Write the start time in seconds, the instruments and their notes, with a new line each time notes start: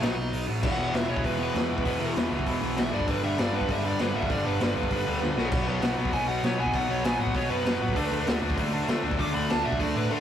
0.02 picked electric bass B1, distorted electric guitar B2 F#3 B3 D#4, lead electric guitar D#4 D#5, snare, open hi-hat
0.17 picked electric bass B1
0.33 picked electric bass B1, open hi-hat
0.47 picked electric bass A1, distorted electric guitar B2 F#3 B3
0.62 picked electric bass E1, distorted electric guitar E2 B2 E3 G#3 B3 E4, lead electric guitar F#5, kick, crash
0.78 picked electric bass E1, distorted electric guitar E2 B2 E3 G#3 B3 E4
0.92 picked electric bass E1, distorted electric guitar E2 B2 E3 G#3 B3 E4, lead electric guitar E5, snare, open hi-hat
1.08 picked electric bass E1, distorted electric guitar E2 B2 E3 G#3 B3 E4, lead electric guitar C#5
1.17 kick
1.23 picked electric bass E1, distorted electric guitar E2 B2 E3 G#3 B3 E4, lead electric guitar B4, kick, open hi-hat
1.38 distorted electric guitar E2 B2 E3 G#3 B3 E4
1.54 distorted electric guitar E2 B2 E3 G#3 B3 E4, picked electric bass E2, snare, open hi-hat
1.70 picked electric bass E1, distorted electric guitar E2 B2 E3 G#3 B3 E4
1.78 kick
1.83 picked electric bass E1, distorted electric guitar E2 B2 E3 G#3 B3 E4, kick, open hi-hat
2.00 picked electric bass E1, distorted electric guitar E2 B2 E3 G#3 B3 E4
2.16 picked electric bass E1, distorted electric guitar E2 B2 E3 G#3 B3 E4, snare, open hi-hat
2.30 picked electric bass C#2, distorted electric guitar E2 B2 E3 G#3 B3 E4
2.39 kick
2.46 picked electric bass E1, distorted electric guitar E2 B2 E3 G#3 B3 E4, kick, open hi-hat
2.62 picked electric bass B1, distorted electric guitar E2 B2 E3 G#3 B3 E4
2.76 picked electric bass B1, distorted electric guitar E2 B2 E3 G#3 B3 E4, lead electric guitar E5, snare, open hi-hat
2.92 picked electric bass G1, distorted electric guitar G2 D3 G3 B3 D4, lead electric guitar D5
3.00 kick
3.07 picked electric bass G1, distorted electric guitar G2 D3 G3 B3 D4, lead electric guitar B4, kick, open hi-hat
3.21 picked electric bass G1, distorted electric guitar G2 D3 G3 B3 D4, lead electric guitar E5
3.37 picked electric bass G1, distorted electric guitar G2 D3 G3 B3 D4, lead electric guitar D5, snare, open hi-hat
3.51 picked electric bass G1, distorted electric guitar G2 D3 G3 B3 D4, lead electric guitar B4
3.61 kick
3.67 picked electric bass G1, distorted electric guitar G2 D3 G3 B3 D4, lead electric guitar E5, kick, open hi-hat
3.83 distorted electric guitar G2 D3 G3 B3 D4, lead electric guitar D5
3.98 distorted electric guitar G2 D3 G3 B3 D4, picked electric bass G2, snare, open hi-hat
4.02 lead electric guitar B4
4.14 picked electric bass G1, distorted electric guitar G2 D3 G3 B3 D4, lead electric guitar E5
4.22 kick
4.29 picked electric bass G1, distorted electric guitar G2 D3 G3 B3 D4, lead electric guitar D5, kick, open hi-hat
4.43 picked electric bass G1, distorted electric guitar G2 D3 G3 B3 D4, lead electric guitar B4
4.60 picked electric bass G1, distorted electric guitar G2 D3 G3 B3 D4, lead electric guitar B4, snare, open hi-hat
4.76 picked electric bass E2, distorted electric guitar G2 D3 G3 B3 D4
4.83 kick
4.90 picked electric bass G1, distorted electric guitar G2 D3 G3 B3 D4, kick, open hi-hat
5.06 picked electric bass D2, distorted electric guitar G2 D3 G3 B3 D4
5.21 picked electric bass D2, distorted electric guitar G2 D3 G3 B3 D4, snare
5.37 picked electric bass B1, distorted electric guitar B2 F#3 B3 D#4, snare
5.52 picked electric bass B1, distorted electric guitar B2 F#3 B3 D#4, kick, crash
5.66 picked electric bass B1, distorted electric guitar B2 F#3 B3 D#4
5.82 picked electric bass B1, distorted electric guitar B2 F#3 B3 D#4, snare, open hi-hat
5.97 picked electric bass B1, distorted electric guitar B2 F#3 B3 D#4
6.05 kick
6.13 picked electric bass B1, distorted electric guitar B2 F#3 B3 D#4, lead electric guitar G#5, kick, open hi-hat
6.28 distorted electric guitar B2 F#3 B3 D#4, lead electric guitar F#5
6.43 picked electric bass B2, distorted electric guitar B2 F#3 B3 D#4, lead electric guitar C#5, snare, open hi-hat
6.59 picked electric bass B1, distorted electric guitar B2 F#3 B3 D#4, lead electric guitar G#5
6.66 kick
6.73 picked electric bass B1, distorted electric guitar B2 F#3 B3 D#4, lead electric guitar F#5, kick, open hi-hat
6.88 picked electric bass B1, distorted electric guitar B2 F#3 B3 D#4, lead electric guitar C#5
7.04 picked electric bass B1, distorted electric guitar B2 F#3 B3 D#4, lead electric guitar G#5, snare, open hi-hat
7.20 picked electric bass A2, distorted electric guitar B2 F#3 B3 D#4, lead electric guitar F#5
7.27 kick
7.34 picked electric bass B1, distorted electric guitar B2 F#3 B3 D#4, lead electric guitar C#5, kick, open hi-hat
7.50 picked electric bass F#2, distorted electric guitar B2 F#3 B3 D#4, lead electric guitar B4
7.65 picked electric bass F#2, distorted electric guitar B2 F#3 B3 D#4, snare, open hi-hat
7.80 picked electric bass A1, distorted electric guitar B2 F#3 B3 D#4
7.88 kick
7.95 picked electric bass D2, distorted electric guitar D3 F#3 A3 D4, kick, open hi-hat
8.11 picked electric bass D2, distorted electric guitar D3 F#3 A3 D4
8.26 picked electric bass D2, distorted electric guitar D3 F#3 A3 D4, snare, open hi-hat
8.41 picked electric bass D2, distorted electric guitar D3 F#3 A3 D4
8.50 kick
8.57 picked electric bass D2, distorted electric guitar D3 F#3 A3 D4, kick, open hi-hat
8.72 distorted electric guitar D3 F#3 A3 D4
8.87 distorted electric guitar D3 F#3 A3 D4, picked electric bass D3, snare, open hi-hat
9.03 picked electric bass D2, distorted electric guitar D3 F#3 A3 D4
9.11 kick
9.18 picked electric bass D2, distorted electric guitar D3 F#3 A3 D4, lead electric guitar D6, kick, open hi-hat
9.32 picked electric bass D2, distorted electric guitar D3 F#3 A3 D4, lead electric guitar B5
9.47 picked electric bass D2, distorted electric guitar D3 F#3 A3 D4, lead electric guitar A5, snare, open hi-hat
9.64 picked electric bass B2, distorted electric guitar D3 F#3 A3 D4, lead electric guitar E5
9.72 kick
9.79 picked electric bass D2, distorted electric guitar D3 F#3 A3 D4, lead electric guitar D5, kick, open hi-hat
9.95 picked electric bass A2, distorted electric guitar D3 F#3 A3 D4, lead electric guitar B4
10.10 distorted electric guitar D3 F#3 A3 D4, lead electric guitar A4